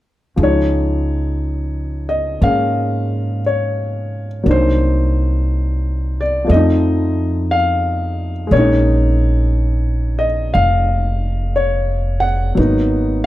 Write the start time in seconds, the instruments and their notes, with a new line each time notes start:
0.36 upright bass C#2, grand piano F3 G#3
0.43 grand piano D#4 C#5
2.09 grand piano D#5
2.41 upright bass G#2, grand piano G#3 A#3 C#4 F5
3.46 grand piano C#5
4.43 upright bass C2, grand piano F#3 A#3 D4
4.49 grand piano D#4 C5
6.21 grand piano D5
6.44 grand piano F3 A3 D5
6.49 upright bass F2, grand piano C4 D#5
6.56 grand piano D#4
7.51 grand piano F5
8.47 grand piano G#3
8.51 upright bass A#1, grand piano A#3 C#4 C#5
8.59 grand piano D#4
10.19 grand piano D#5
10.54 upright bass F1, grand piano F5
11.56 grand piano C#5
12.20 grand piano F#5
12.55 upright bass G#1, grand piano F#3 A#3 B3
12.59 grand piano D#4